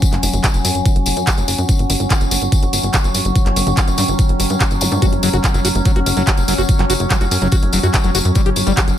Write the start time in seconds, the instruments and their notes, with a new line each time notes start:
Already playing: synth drone F#3 C#4, ambient pad C#4 F#4
0.02 kick, closed hi-hat, tambourine
0.13 analog synth bass F#1, clap, closed hi-hat
0.23 analog synth bass F#1, open hi-hat, tambourine
0.33 analog synth bass F#1, closed hi-hat, tambourine
0.44 kick, clap, closed hi-hat, tambourine
0.54 analog synth bass F#1, closed hi-hat, tambourine
0.65 analog synth bass F#2, open hi-hat, tambourine
0.75 analog synth bass F#1, closed hi-hat, tambourine
0.85 kick, closed hi-hat, tambourine
0.96 analog synth bass F#1, closed hi-hat
1.06 analog synth bass F#1, open hi-hat, tambourine
1.17 analog synth bass F#2, closed hi-hat, tambourine
1.27 kick, clap, closed hi-hat, tambourine
1.38 analog synth bass F#1, closed hi-hat, tambourine
1.48 analog synth bass F#1, open hi-hat, tambourine
1.58 analog synth bass F#2, closed hi-hat, tambourine
1.69 ambient pad D3, kick, closed hi-hat, tambourine
1.79 analog synth bass G1, closed hi-hat
1.90 analog synth bass G1, open hi-hat, tambourine
2.00 analog synth bass G1, closed hi-hat, tambourine
2.10 kick, clap, closed hi-hat, tambourine
2.21 analog synth bass G1, closed hi-hat, tambourine
2.31 analog synth bass G1, open hi-hat, tambourine
2.42 analog synth bass G1, closed hi-hat, tambourine
2.52 kick, closed hi-hat, tambourine
2.63 analog synth bass G1, closed hi-hat
2.73 analog synth bass G1, open hi-hat, tambourine
2.83 analog synth bass G1, closed hi-hat, tambourine
2.93 kick, clap, closed hi-hat, tambourine
2.99 ambient pad G5
3.04 analog synth bass G1, closed hi-hat, tambourine
3.14 analog synth bass G1, open hi-hat, tambourine
3.25 analog synth bass G1, closed hi-hat, tambourine
3.36 kick, closed hi-hat, tambourine
3.46 analog synth bass G1, clap, closed hi-hat
3.56 analog synth bass G1, open hi-hat, tambourine
3.67 analog synth bass G1, closed hi-hat, tambourine
3.77 kick, clap, closed hi-hat, tambourine
3.88 analog synth bass G1, closed hi-hat, tambourine
3.98 analog synth bass G2, open hi-hat, tambourine
4.08 analog synth bass G1, closed hi-hat, tambourine
4.19 kick, closed hi-hat, tambourine
4.29 analog synth bass G1, closed hi-hat
4.40 analog synth bass G1, open hi-hat, tambourine
4.50 analog synth bass G2, closed hi-hat, tambourine
4.61 kick, clap, closed hi-hat, tambourine
4.71 analog synth bass G1, closed hi-hat, tambourine
4.81 analog synth bass G1, open hi-hat, tambourine, zap
4.92 analog synth bass G2, closed hi-hat, tambourine
5.02 ambient pad C#4, acid bass F#4, kick, closed hi-hat, tambourine
5.13 analog synth bass F#1, closed hi-hat
5.23 analog synth bass F#1, acid bass F#3, open hi-hat, tambourine
5.33 analog synth bass F#1, acid bass F#4, closed hi-hat, tambourine
5.44 kick, clap, closed hi-hat, tambourine
5.54 analog synth bass F#1, acid bass F#3, ambient pad F#5, closed hi-hat, tambourine
5.62 analog synth bass F#1, ambient pad F#4, acid bass F#4, open hi-hat, tambourine
5.75 analog synth bass F#1, closed hi-hat, tambourine
5.85 acid bass F#3, kick, closed hi-hat, tambourine
5.96 analog synth bass F#1, acid bass F#4, closed hi-hat
6.06 analog synth bass F#1, open hi-hat, tambourine
6.17 analog synth bass F#1, acid bass F#3, closed hi-hat, tambourine
6.27 acid bass F#4, kick, clap, closed hi-hat, tambourine
6.37 analog synth bass F#1, closed hi-hat, tambourine
6.48 analog synth bass F#1, acid bass F#3, open hi-hat, tambourine
6.58 analog synth bass F#1, acid bass F#4, closed hi-hat, tambourine
6.69 kick, closed hi-hat, tambourine
6.79 analog synth bass F#1, acid bass F#3, clap, closed hi-hat
6.90 analog synth bass F#1, acid bass F#4, open hi-hat, tambourine
7.00 analog synth bass F#1, closed hi-hat, tambourine
7.10 acid bass F#3, kick, clap, closed hi-hat, tambourine
7.21 analog synth bass F#1, acid bass F#4, closed hi-hat, tambourine
7.31 analog synth bass F#2, open hi-hat, tambourine
7.42 analog synth bass F#1, acid bass F#3, closed hi-hat, tambourine
7.52 acid bass F#4, kick, closed hi-hat, tambourine
7.63 analog synth bass F#1, closed hi-hat
7.73 analog synth bass F#1, acid bass F#3, open hi-hat, tambourine
7.83 analog synth bass F#2, acid bass F#4, closed hi-hat, tambourine
7.93 kick, clap, closed hi-hat, tambourine
8.04 analog synth bass F#1, acid bass F#3, closed hi-hat, tambourine
8.15 analog synth bass F#1, acid bass F#4, open hi-hat, tambourine
8.25 analog synth bass F#2, closed hi-hat, tambourine
8.35 ambient pad D3, acid bass G3, kick, closed hi-hat, tambourine
8.46 analog synth bass G1, acid bass G4, closed hi-hat
8.56 analog synth bass G1, open hi-hat, tambourine
8.67 analog synth bass G1, acid bass G3, closed hi-hat, tambourine
8.77 acid bass G4, kick, clap, closed hi-hat, tambourine
8.88 analog synth bass G1, closed hi-hat, tambourine